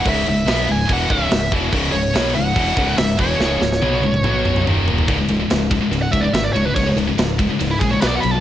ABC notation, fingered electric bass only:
X:1
M:4/4
L:1/8
Q:1/4=143
K:C#m
V:1 name="Fingered electric bass" clef=bass
C,,, C,,, B,,, C,,, E,,, C,,, C,,, E,,, | C,,, C,,, B,,, C,,, E,,, C,,, C,,, E,,, | C,,, C,,, B,,, C,,, B,,,2 D,,,2 | C,,, C,,, C,,,2 C,,, C,,, G,,, C,,, |
C,,, C,,, C,,,2 C,,, ^A,,, B,,, B,,, |]